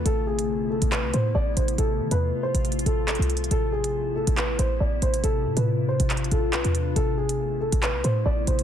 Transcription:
<<
  \new Staff \with { instrumentName = "Grand piano" } { \time 4/4 \key a \minor \tempo 4 = 139 a'8 gis'4 a'8 b'8 c''8 d''8 c''8 | a'8. b'8. c''4 a'8 a'4 | a'8 gis'4 a'8 b'8 c''8 d''8 c''8 | a'8. b'8. c''4 a'8 b'4 |
a'8 gis'4 a'8 b'8 c''8 d''8 c''8 | }
  \new Staff \with { instrumentName = "Ambient pad" } { \time 4/4 \key a \minor << { <a b e'>1 | <f f'>1 | <b e'>1 | <d' f'>1 |
<a b e'>1 | } \\ { c1~ | c1 | c1~ | c1~ |
c1 | } >> }
  \new Staff \with { instrumentName = "808-style bass" } { \clef bass \time 4/4 \key a \minor a,,4.~ a,,16 a,,8 c,16 a,8 a,,8 a,,8 | a,,8 e16 e,8 r8 a,,8. a,,8. c,8. | a,,4.~ a,,16 a,,8. a,,8 a,,8 a,,8 | a,,8 a,16 a,4 a,,8. a,,8 b,,16 e,8. |
a,,4.~ a,,16 a,,8 c,16 a,8 a,,8 a,,8 | }
  \new DrumStaff \with { instrumentName = "Drums" } \drummode { \time 4/4 hh8. hh16 r8. hh16 <hc hh>8 hh8 r8 hh16 hh16 | hh8. hh16 r8. hh16 \tuplet 3/2 { hh16 hh16 hh16 hh16 r16 r16 <hc hh>16 hh16 hh16 hh16 hh16 hh16 } | hh8. hh16 r8. hh16 <hc hh>8 hh8 r8 hh16 hh16 | hh8. hh16 r8. hh16 \tuplet 3/2 { <hc hh>16 hh16 hh16 hh16 r16 r16 } <hc hh>16 hh16 hh8 |
hh8. hh16 r8. hh16 <hc hh>8 hh8 r8 hh16 hh16 | }
>>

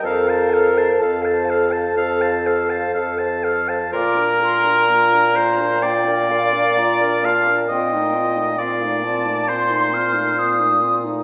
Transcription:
<<
  \new Staff \with { instrumentName = "Flute" } { \time 4/4 \key bes \major \tempo 4 = 64 a''16 f''16 a''16 f''16 a''16 f''16 a''16 f''16 a''16 f''16 a''16 f''16 a''16 f''16 a''16 f''16 | d'''8 c'''8 bes''4 g''8 f''8 bes''8 a''8 | g''4 f''8 a''8 c'''8 f'''8 ees'''8 r8 | }
  \new Staff \with { instrumentName = "Oboe" } { \time 4/4 \key bes \major f''16 a''16 f''16 a''16 f''16 a''16 f''16 a''16 f''16 a''16 f''16 a''16 f''16 a''16 f''16 a''16 | bes'4. c''8 d''4. f''8 | ees''4 d''4 c''4. r8 | }
  \new Staff \with { instrumentName = "Clarinet" } { \time 4/4 \key bes \major a'16 c''16 a'16 c''16 a'16 c''16 a'16 c''16 a'16 c''16 a'16 c''16 a'16 c''16 a'16 c''16 | f'16 bes'16 f'16 bes'16 f'16 bes'16 f'16 bes'16 f'16 bes'16 f'16 bes'16 f'16 bes'16 f'16 bes'16 | f'16 ees'16 f'16 ees'16 f'16 ees'16 f'16 ees'16 f'16 ees'16 f'16 ees'16 f'16 ees'16 f'16 ees'16 | }
  \new Staff \with { instrumentName = "French horn" } { \time 4/4 \key bes \major bes'4 a'2~ a'8 r8 | bes16 d'16 bes16 d'16 bes16 d'16 bes16 d'16 bes16 d'16 bes16 d'16 bes16 d'16 bes16 d'16 | c'16 a16 c'16 a16 c'16 a16 c'16 a16 c'16 a16 c'16 a16 c'16 a16 c'16 a16 | }
  \new Staff \with { instrumentName = "Bassoon" } { \clef bass \time 4/4 \key bes \major f,4 f,4 f,4 f,4 | bes,1 | bes,1 | }
>>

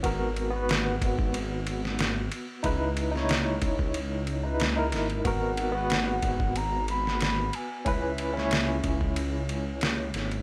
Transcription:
<<
  \new Staff \with { instrumentName = "Flute" } { \time 4/4 \key gis \minor \tempo 4 = 92 r1 | r1 | fis''2 ais''8 b''8 b''8 gis''8 | e''2 r2 | }
  \new Staff \with { instrumentName = "Tine electric piano" } { \time 4/4 \key gis \minor <b fis' ais'>8. <b fis' b'>2.~ <b fis' b'>16 | <dis' e' b'>8. <dis' e' cis''>2 <dis' e' b'>8 <dis' e' ais'>8. | <b fis' ais'>8. <b fis' b'>2.~ <b fis' b'>16 | <cis' e' b'>8. <cis' e' cis''>2.~ <cis' e' cis''>16 | }
  \new Staff \with { instrumentName = "Detuned saw bass" } { \clef bass \time 4/4 \key gis \minor gis,,4. gis,,2 r8 | cis,4. cis,2 gis,,8 | gis,,4. gis,,2 r8 | cis,4. cis,2 gis,,8 | }
  \new DrumStaff \with { instrumentName = "Drums" } \drummode { \time 4/4 <bd cymr>8 cymr8 <cymr sn>8 <bd cymr>16 bd16 cymr8 cymr16 sn16 <cymr sn>8 cymr8 | <bd cymr>8 cymr16 sn16 <cymr sn>8 <bd cymr>16 bd16 cymr8 cymr8 <cymr sn>8 <cymr sn>16 cymr16 | <bd cymr>8 cymr8 <cymr sn>8 <bd cymr>16 bd16 cymr8 cymr16 sn16 <cymr sn>8 cymr8 | <bd cymr>8 cymr16 sn16 <cymr sn>8 <bd cymr>16 bd16 cymr8 cymr8 <cymr sn>8 <cymr sn>16 cymr16 | }
>>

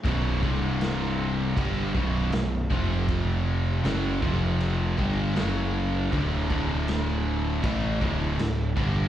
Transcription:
<<
  \new Staff \with { instrumentName = "Distorted electric guitar" } { \clef bass \time 4/4 \key d \major \tempo 4 = 79 <b,, fis, b,>8 <c, g, c>4. <g, d g>8 <b,, fis, b,>8 <b,, fis,>8 <f, c f>8~ | <f, c f>4 <fis, cis fis>8 <f, c f>4 <g, d g>8 <fis, cis fis>4 | <d, a, d>8 <d, a, d>4. <a, e a>8 <d, a, d>8 <d, a,>8 <g, d g>8 | }
  \new Staff \with { instrumentName = "Distorted electric guitar" } { \clef bass \time 4/4 \key d \major <b,, fis, b,>8 <c, g, c>4. <g, d g>8 <b,, fis, b,>8 <b,, fis,>8 <f, c f>8~ | <f, c f>4 <fis, cis fis>8 <f, c f>4 <g, d g>8 <fis, cis fis>4 | <d, a, d>8 <d, a, d>4. <a, e a>8 <d, a, d>8 <d, a,>8 <g, d g>8 | }
  \new Staff \with { instrumentName = "Distorted electric guitar" } { \clef bass \time 4/4 \key d \major <b,, fis, b,>8 <c, g, c>4. <g, d g>8 <b,, fis, b,>8 <b,, fis,>8 <f, c f>8~ | <f, c f>4 <fis, cis fis>8 <f, c f>4 <g, d g>8 <fis, cis fis>4 | <d, a, d>8 <d, a, d>4. <a, e a>8 <d, a, d>8 <d, a,>8 <g, d g>8 | }
  \new Staff \with { instrumentName = "Picked electric bass" } { \clef bass \time 4/4 \key d \major b,,,8 c,,4. g,,8 b,,,8 b,,,8 f,,8~ | f,,4 fis,,8 f,,4 g,,8 fis,,4 | d,,8 d,,4. a,,8 d,,8 d,,8 g,,8 | }
  \new DrumStaff \with { instrumentName = "Drums" } \drummode { \time 4/4 <cymc bd>8 bd8 <cymc sn>4 <cymc bd>8 bd8 <cymc sn>8 bd8 | <cymc bd>4 <cymc sn>8 bd8 cymc8 bd8 <cymc sn>4 | <cymc bd>8 bd8 <cymc sn>4 <cymc bd>8 bd8 <cymc sn>8 bd8 | }
>>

